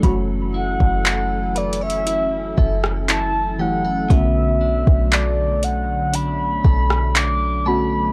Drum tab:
HH |x-----------x-----x-x-x-x-----------x-----------|x-----------x-----x-----x-----------x-----------|
CP |------------x-----------------------x-----------|------------x-----------------------x-----------|
SD |---------------------------------r--------------|---------------------------------r--------------|
BD |o--------o--------------------o-----------------|o--------o--------------------o-----------------|